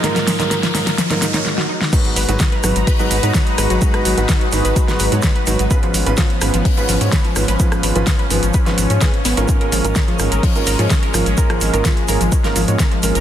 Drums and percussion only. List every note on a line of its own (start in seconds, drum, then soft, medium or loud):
0.04 snare medium
0.04 closed hi-hat medium
0.04 shaker soft
0.16 snare medium
0.16 closed hi-hat soft
0.16 shaker soft
0.27 snare loud
0.27 open hi-hat loud
0.27 shaker medium
0.40 snare medium
0.40 closed hi-hat medium
0.40 shaker soft
0.51 snare loud
0.51 closed hi-hat medium
0.51 shaker soft
0.63 snare medium
0.63 closed hi-hat soft
0.63 shaker soft
0.75 snare loud
0.75 open hi-hat medium
0.75 shaker medium
0.87 snare medium
0.87 closed hi-hat medium
0.87 shaker soft
0.98 snare loud
0.98 closed hi-hat medium
0.98 shaker soft
1.11 snare medium
1.11 closed hi-hat soft
1.11 shaker soft
1.22 snare loud
1.22 open hi-hat loud
1.22 shaker medium
1.34 snare medium
1.34 closed hi-hat medium
1.34 shaker soft
1.46 snare medium
1.58 snare medium
1.81 snare medium
1.93 kick loud
1.93 closed hi-hat medium
1.93 crash loud
1.93 shaker medium
1.93 shaker soft
2.05 closed hi-hat soft
2.16 open hi-hat loud
2.16 shaker medium
2.29 closed hi-hat medium
2.29 shaker soft
2.39 kick loud
2.39 snare loud
2.39 closed hi-hat medium
2.39 shaker medium
2.39 shaker soft
2.52 closed hi-hat soft
2.63 cross-stick medium
2.63 open hi-hat medium
2.63 shaker medium
2.76 closed hi-hat medium
2.76 shaker soft
2.87 kick loud
2.87 closed hi-hat medium
2.87 open hi-hat medium
2.87 shaker soft
2.99 closed hi-hat soft
2.99 shaker soft
3.11 snare soft
3.11 open hi-hat loud
3.11 shaker medium
3.23 closed hi-hat medium
3.23 shaker soft
3.34 kick loud
3.34 snare loud
3.34 closed hi-hat medium
3.34 shaker medium
3.34 shaker soft
3.47 closed hi-hat soft
3.58 cross-stick medium
3.58 open hi-hat medium
3.58 shaker medium
3.70 closed hi-hat medium
3.70 shaker soft
3.82 kick loud
3.82 closed hi-hat medium
3.82 shaker medium
3.82 shaker soft
3.94 cross-stick medium
3.94 closed hi-hat soft
4.05 open hi-hat loud
4.05 shaker medium
4.18 closed hi-hat medium
4.18 shaker soft
4.29 kick loud
4.29 snare loud
4.29 closed hi-hat medium
4.29 shaker medium
4.29 shaker soft
4.41 closed hi-hat soft
4.52 open hi-hat medium
4.52 shaker medium
4.65 closed hi-hat medium
4.65 shaker soft
4.76 kick loud
4.76 closed hi-hat medium
4.76 shaker medium
4.76 shaker soft
4.88 snare soft
4.88 closed hi-hat soft
4.88 shaker soft
4.99 open hi-hat loud
4.99 shaker medium
5.12 closed hi-hat medium
5.12 shaker soft
5.22 kick loud
5.22 snare loud
5.22 closed hi-hat medium
5.22 shaker medium
5.24 shaker soft
5.36 closed hi-hat soft
5.46 open hi-hat medium
5.46 shaker medium
5.59 closed hi-hat medium
5.59 shaker soft
5.71 kick loud
5.71 closed hi-hat soft
5.71 shaker medium
5.71 shaker soft
5.83 closed hi-hat soft
5.94 open hi-hat loud
5.94 shaker medium
6.06 closed hi-hat medium
6.06 shaker soft
6.17 kick loud
6.17 snare loud
6.17 closed hi-hat medium
6.17 shaker medium
6.17 shaker soft
6.30 closed hi-hat soft
6.41 cross-stick medium
6.41 open hi-hat medium
6.41 shaker medium
6.54 closed hi-hat medium
6.54 shaker soft
6.65 kick loud
6.65 closed hi-hat medium
6.65 open hi-hat medium
6.65 shaker soft
6.77 closed hi-hat soft
6.77 shaker soft
6.88 snare medium
6.88 open hi-hat loud
6.88 shaker medium
7.01 closed hi-hat medium
7.01 shaker soft
7.12 kick loud
7.12 snare loud
7.12 closed hi-hat medium
7.12 shaker medium
7.12 shaker soft
7.25 closed hi-hat soft
7.36 cross-stick medium
7.36 open hi-hat medium
7.36 shaker medium
7.48 closed hi-hat soft
7.48 shaker soft
7.60 kick loud
7.60 closed hi-hat soft
7.60 shaker medium
7.60 shaker soft
7.72 cross-stick medium
7.72 closed hi-hat soft
7.72 shaker soft
7.83 open hi-hat loud
7.83 shaker medium
7.96 closed hi-hat soft
7.96 shaker soft
8.06 kick loud
8.06 snare loud
8.06 closed hi-hat medium
8.06 shaker medium
8.06 shaker soft
8.19 closed hi-hat soft
8.31 open hi-hat medium
8.31 shaker medium
8.43 closed hi-hat medium
8.43 shaker soft
8.54 kick loud
8.54 closed hi-hat soft
8.54 shaker medium
8.54 shaker soft
8.66 snare soft
8.66 closed hi-hat soft
8.66 shaker soft
8.78 open hi-hat loud
8.78 shaker medium
8.90 closed hi-hat soft
8.90 shaker soft
9.01 kick loud
9.01 snare loud
9.01 closed hi-hat soft
9.01 shaker medium
9.01 shaker soft
9.14 closed hi-hat soft
9.25 snare loud
9.25 open hi-hat medium
9.25 shaker medium
9.37 closed hi-hat medium
9.37 shaker soft
9.48 kick loud
9.48 closed hi-hat soft
9.48 shaker medium
9.48 shaker soft
9.61 closed hi-hat soft
9.72 open hi-hat loud
9.72 shaker medium
9.85 closed hi-hat soft
9.85 shaker soft
9.95 kick loud
9.95 snare loud
9.95 closed hi-hat medium
9.95 shaker medium
9.95 shaker soft
10.08 closed hi-hat soft
10.19 cross-stick medium
10.19 open hi-hat medium
10.19 shaker medium
10.32 closed hi-hat medium
10.32 shaker soft
10.43 kick loud
10.43 closed hi-hat medium
10.43 open hi-hat medium
10.43 shaker soft
10.55 closed hi-hat soft
10.55 shaker soft
10.66 snare soft
10.66 open hi-hat loud
10.66 shaker medium
10.79 closed hi-hat soft
10.79 shaker soft
10.90 kick loud
10.90 snare loud
10.90 closed hi-hat medium
10.90 shaker medium
10.90 shaker soft
11.03 closed hi-hat soft
11.14 cross-stick medium
11.14 open hi-hat medium
11.14 shaker medium
11.26 closed hi-hat soft
11.26 shaker soft
11.37 kick loud
11.37 closed hi-hat medium
11.37 shaker medium
11.37 shaker soft
11.50 cross-stick medium
11.50 closed hi-hat soft
11.61 open hi-hat loud
11.61 shaker medium
11.74 closed hi-hat medium
11.74 shaker soft
11.85 kick loud
11.85 snare loud
11.85 closed hi-hat medium
11.85 shaker medium
11.85 shaker soft
11.97 closed hi-hat soft
12.08 open hi-hat medium
12.08 shaker medium
12.21 closed hi-hat medium
12.21 shaker soft
12.32 kick loud
12.32 closed hi-hat medium
12.32 shaker medium
12.32 shaker soft
12.44 snare soft
12.44 closed hi-hat soft
12.44 shaker soft
12.56 open hi-hat loud
12.56 shaker medium
12.68 closed hi-hat soft
12.68 shaker soft
12.79 kick loud
12.79 snare loud
12.79 closed hi-hat medium
12.79 shaker medium
12.79 shaker soft
12.92 closed hi-hat soft
13.03 open hi-hat medium
13.03 shaker medium
13.15 closed hi-hat soft
13.15 shaker soft